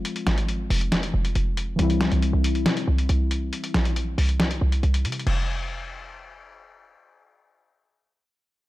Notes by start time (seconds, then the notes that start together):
Already playing: F3 G#3 C4 F4
0.05 closed hi-hat
0.16 closed hi-hat
0.27 G#1, snare, closed hi-hat
0.38 closed hi-hat
0.49 closed hi-hat
0.70 F1, open hi-hat
0.81 closed hi-hat
0.92 snare, closed hi-hat
1.03 closed hi-hat
1.14 F1
1.25 closed hi-hat
1.35 F1, closed hi-hat
1.57 closed hi-hat
1.76 C2 E3 G3, closed hi-hat
1.80 C4 E4
1.90 closed hi-hat
2.01 snare, closed hi-hat
2.12 C2, closed hi-hat
2.22 closed hi-hat
2.33 C2
2.44 closed hi-hat
2.55 closed hi-hat
2.66 C3, snare, closed hi-hat
2.77 closed hi-hat
2.88 C2
2.98 closed hi-hat
3.09 C2, closed hi-hat
3.31 closed hi-hat
3.53 closed hi-hat
3.64 closed hi-hat
3.74 A#1, snare, closed hi-hat
3.85 closed hi-hat
3.96 closed hi-hat
4.18 C2, open hi-hat
4.29 closed hi-hat
4.40 snare, closed hi-hat
4.51 closed hi-hat
4.61 C2
4.72 closed hi-hat
4.83 C2, closed hi-hat
4.94 closed hi-hat
5.05 C3, closed hi-hat
5.12 closed hi-hat
5.19 closed hi-hat
5.27 F1, crash